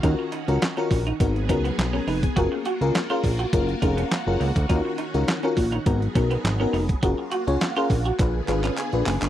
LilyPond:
<<
  \new Staff \with { instrumentName = "FM electric piano" } { \time 4/4 \key ees \minor \tempo 4 = 103 << { r2. r16 <des' bes'>16 <ees' ces''>16 <ces' aes'>16~ | <ces' aes'>16 r2. r8. | r1 | r2 r8 f''8 aes''4 | } \\ { <des' f' ges' bes'>16 r8 <des' f' ges' bes'>16 r16 <des' f' ges' bes'>16 r8 <ces' ees' ges' bes'>16 r16 <ces' ees' ges' bes'>16 r4 r16 | <des' f' aes' bes'>16 r8 <des' f' aes' bes'>16 r16 <des' f' aes' bes'>16 r8 <des' f' aes' bes'>16 r16 <des' f' aes' bes'>16 r8 <des' f' aes' bes'>16 r8 | <des' f' ges' bes'>16 r8 <des' f' ges' bes'>16 r16 <des' f' ges' bes'>16 r8 <ces' ees' ges' bes'>16 r16 <ces' ees' ges' bes'>16 r8 <ces' ees' ges' bes'>16 r8 | <des' f' aes' bes'>16 r8 <des' f' aes' des''>16 r16 <des' f' aes' bes'>16 r8 <d' f' aes' ces''>16 r16 <d' f' aes' ces''>16 r8 <d' f' aes' ces''>16 r8 | } >> }
  \new Staff \with { instrumentName = "Clean electric guitar" } { \time 4/4 \key ees \minor ees'16 r16 ees'16 r8 des'16 r16 ees'16 r8 des'16 ces'16 r16 des'16 ees'16 r16 | ges'16 r16 ges'16 r8 f'16 r16 ges'16 r8 ees'16 des'16 r8 bes16 r16 | ees'16 r16 ees'16 r8 des'16 r16 ees'16 r8 des'16 ces'16 r16 des'16 ees'16 r16 | ges'16 r16 ges'16 r8 f'16 r16 ges'16 r8 d'16 des'16 r8 bes16 r16 | }
  \new Staff \with { instrumentName = "String machine" } { \time 4/4 \key ees \minor << { ges'2 aes'2 | ges'1~ | ges'2 aes'2 | ges'2 aes'2 | } \\ { <ees des'>2 <ges ces'>2 | <bes f'>1 | <ees des'>2 <ges ces'>2 | <bes f'>2 <d ces'>2 | } >> }
  \new Staff \with { instrumentName = "Analog synth bass" } { \clef bass \time 4/4 \key ees \minor ees,16 r8 des,16 r8 bes,,8 aes,,8 des,8 ces,8 f,,8 | ges,,16 r8 des,16 r8 bes,,8 ges,,8 f,,8 r16 ges,,16 des,16 d,16 | ees,16 r8 des,16 r8 bes,,8 aes,,8 ces,8 aes,,8 f,,8 | ges,,16 r8 des,16 r8 bes,,8 bes,,8 aes,,8 r16 bes,,16 ges,,16 g,,16 | }
  \new DrumStaff \with { instrumentName = "Drums" } \drummode { \time 4/4 <hh bd>8 hh16 hh16 <hc hh sn>16 hh16 <hho bd>16 hh16 <hh bd>16 hh16 <hh bd>16 hh16 <hc hh sn>8 hho16 <hh bd>16 | <hh bd>8 hh16 hh16 <hc hh sn>16 hh16 <hho bd>16 hh16 <hh bd>16 hh16 <hh bd>16 hh16 <hc hh sn>8 hho16 <hh bd>16 | <hh bd>8 hh16 hh16 <hc hh sn>16 hh16 <hho bd>16 hh16 <hh bd>16 hh16 <hh bd>16 hh16 <hc hh sn>8 hho16 <hh bd>16 | <hh bd>8 hh16 hh16 <hc hh sn>16 hh16 <hho bd>16 hh16 <hc hh bd>8 <hc hh>16 <hc hh>16 <hc hh>16 hh16 <hc hho>16 <hc hh>16 | }
>>